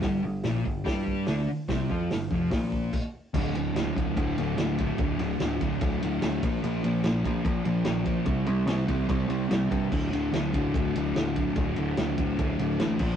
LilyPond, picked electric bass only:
\new Staff \with { instrumentName = "Picked electric bass" } { \clef bass \time 4/4 \key g \major \tempo 4 = 146 g,,8 g,,8 bes,,8 g,,8 g,4 d,8 r8 | c,8 f,8 g,,8 f,,8 bes,,4 r4 | d,,8 d,,8 d,,8 d,,8 d,,8 d,,8 d,,4 | d,,8 d,,8 d,,8 d,,8 d,,8 d,,8 d,,8 bes,,8 |
bes,,8 bes,,8 bes,,8 bes,,8 bes,,8 bes,,8 bes,,4 | c,8 c,8 c,8 c,8 c,8 c,8 c,8 g,8 | d,,8 d,,8 d,,8 d,,8 d,,8 d,,8 d,,4 | d,,8 d,,8 d,,8 d,,8 d,,8 d,,8 a,,8 bes,,8 | }